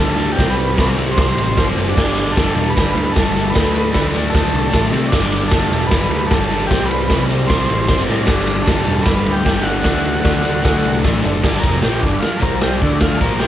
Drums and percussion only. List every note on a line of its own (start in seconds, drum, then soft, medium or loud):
0.19 ride medium
0.39 kick loud
0.39 snare loud
0.39 ride loud
0.59 ride medium
0.78 kick loud
0.78 snare loud
0.78 ride loud
0.98 ride medium
1.18 kick loud
1.18 snare loud
1.18 ride loud
1.38 ride medium
1.58 kick loud
1.58 snare loud
1.58 ride loud
1.78 ride medium
1.97 kick loud
1.97 snare loud
1.97 crash loud
2.18 ride medium
2.37 kick loud
2.37 snare loud
2.37 ride loud
2.58 ride medium
2.77 kick loud
2.77 snare loud
2.77 ride loud
2.97 ride medium
3.16 kick loud
3.16 snare loud
3.16 ride medium
3.37 ride medium
3.55 kick loud
3.55 snare loud
3.55 ride loud
3.76 ride medium
3.94 kick loud
3.94 snare loud
3.94 ride loud
4.15 ride medium
4.35 kick loud
4.35 snare loud
4.35 ride loud
4.55 ride medium
4.74 kick loud
4.74 snare loud
4.74 ride loud
4.94 ride medium
5.12 kick loud
5.12 snare loud
5.12 crash loud
5.32 ride medium
5.51 kick loud
5.51 snare loud
5.51 ride medium
5.73 ride medium
5.91 kick loud
5.91 snare loud
5.91 ride loud
6.11 ride medium
6.31 kick loud
6.31 snare loud
6.31 ride loud
6.51 ride medium
6.71 kick loud
6.71 snare loud
6.71 ride loud
6.91 ride medium
7.10 kick loud
7.10 snare loud
7.10 ride loud
7.30 ride medium
7.50 kick loud
7.50 snare loud
7.50 ride loud
7.70 ride medium
7.88 kick loud
7.88 snare loud
7.88 ride loud
8.08 ride medium
8.27 kick loud
8.27 snare loud
8.27 crash loud
8.47 ride medium
8.68 kick loud
8.68 snare loud
8.68 ride loud
8.87 ride medium
9.06 kick loud
9.06 snare loud
9.06 ride loud
9.26 ride medium
9.46 kick loud
9.46 snare loud
9.46 ride loud
9.65 ride medium
9.84 kick loud
9.84 snare loud
9.84 ride loud
10.05 ride medium
10.25 kick loud
10.25 snare loud
10.25 ride loud
10.45 ride medium
10.65 kick loud
10.65 snare loud
10.65 ride medium
10.85 ride medium
11.04 kick loud
11.04 snare loud
11.04 ride medium
11.25 ride medium
11.44 kick loud
11.44 snare loud
11.44 crash loud
11.44 crash medium
11.64 kick loud
11.82 snare loud
11.82 crash medium
12.03 kick loud
12.23 snare loud
12.23 crash medium
12.42 kick loud
12.62 snare loud
12.62 crash medium
12.82 kick loud
13.01 kick loud
13.01 snare loud
13.01 crash medium
13.21 kick loud
13.40 snare loud
13.40 crash medium